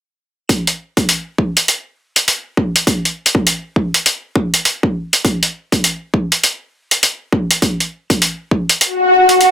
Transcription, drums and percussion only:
0.49 kick loud
0.49 closed hi-hat medium
0.67 closed hi-hat soft
0.97 kick loud
0.97 closed hi-hat medium
1.09 closed hi-hat medium
1.38 kick medium
1.57 closed hi-hat medium
1.68 closed hi-hat medium
2.16 closed hi-hat soft
2.28 closed hi-hat medium
2.57 kick medium
2.76 closed hi-hat medium
2.87 kick loud
2.87 closed hi-hat medium
3.05 closed hi-hat soft
3.26 closed hi-hat medium
3.35 kick loud
3.47 closed hi-hat medium
3.76 kick medium
3.94 closed hi-hat medium
4.06 closed hi-hat medium
4.36 kick loud
4.54 closed hi-hat soft
4.65 closed hi-hat medium
4.83 kick medium
5.13 closed hi-hat medium
5.25 kick loud
5.25 closed hi-hat medium
5.43 closed hi-hat soft
5.72 kick loud
5.72 closed hi-hat medium
5.84 closed hi-hat medium
6.14 kick medium
6.32 closed hi-hat medium
6.44 closed hi-hat medium
6.91 closed hi-hat soft
7.03 closed hi-hat medium
7.32 kick loud
7.51 closed hi-hat medium
7.62 kick loud
7.62 closed hi-hat medium
7.80 closed hi-hat soft
8.10 kick loud
8.10 closed hi-hat medium
8.22 closed hi-hat medium
8.51 kick medium
8.69 closed hi-hat soft
8.81 closed hi-hat medium
9.29 closed hi-hat soft
9.41 closed hi-hat medium

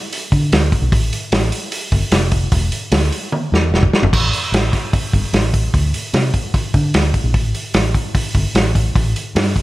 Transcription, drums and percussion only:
0.13 open hi-hat medium
0.32 kick medium
0.32 open hi-hat medium
0.52 snare loud
0.52 open hi-hat medium
0.72 kick medium
0.72 open hi-hat medium
0.92 kick loud
0.92 open hi-hat medium
1.13 open hi-hat medium
1.32 snare loud
1.32 open hi-hat medium
1.52 open hi-hat medium
1.72 open hi-hat medium
1.92 kick medium
1.92 open hi-hat medium
2.12 snare loud
2.12 open hi-hat medium
2.31 kick medium
2.31 open hi-hat medium
2.52 kick loud
2.52 open hi-hat medium
2.72 open hi-hat medium
2.92 snare loud
2.92 open hi-hat medium
3.03 snare soft
3.12 open hi-hat medium
3.32 high tom medium
3.54 snare medium
3.74 snare medium
3.83 kick medium
3.93 snare loud
4.03 floor tom medium
4.13 kick loud
4.13 crash loud
4.33 open hi-hat medium
4.54 snare loud
4.54 open hi-hat medium
4.73 kick medium
4.73 open hi-hat medium
4.93 kick loud
4.93 open hi-hat medium
5.13 kick medium
5.13 open hi-hat medium
5.33 snare loud
5.33 open hi-hat medium
5.54 kick medium
5.54 open hi-hat medium
5.74 kick loud
5.74 open hi-hat medium
5.94 open hi-hat medium
6.14 snare loud
6.14 open hi-hat medium
6.34 kick medium
6.34 open hi-hat medium
6.54 kick loud
6.54 open hi-hat medium
6.74 kick medium
6.74 open hi-hat medium
6.94 snare loud
6.94 open hi-hat medium
7.14 kick medium
7.14 open hi-hat medium
7.34 kick loud
7.34 open hi-hat medium
7.54 open hi-hat medium
7.74 snare loud
7.74 open hi-hat medium
7.94 kick medium
7.94 open hi-hat medium
8.15 kick loud
8.15 open hi-hat medium
8.35 kick medium
8.35 open hi-hat medium
8.55 snare loud
8.55 open hi-hat medium
8.75 kick medium
8.75 open hi-hat medium
8.95 kick loud
8.95 open hi-hat medium
9.16 open hi-hat medium
9.36 snare loud
9.36 open hi-hat medium
9.56 kick medium
9.56 open hi-hat medium

